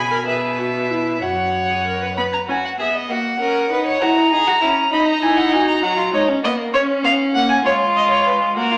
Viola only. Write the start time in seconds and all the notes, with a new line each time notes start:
Already playing: G#4
0.11 A#4
0.26 G#4
0.58 F#4
0.90 E4
1.21 F#4
1.70 G#4
1.86 A#4
2.02 B4
2.17 B3
2.48 C#4
2.79 B3
3.09 A#3
3.40 C#4
3.71 D#4
4.02 E4
4.32 D#4
4.62 C#4
4.92 D#4
5.22 E4
5.53 F#4
5.83 F#3
6.13 G#3
6.43 A#3
6.73 C#4
7.04 B3
7.34 A#3
7.65 G#3
8.56 A#3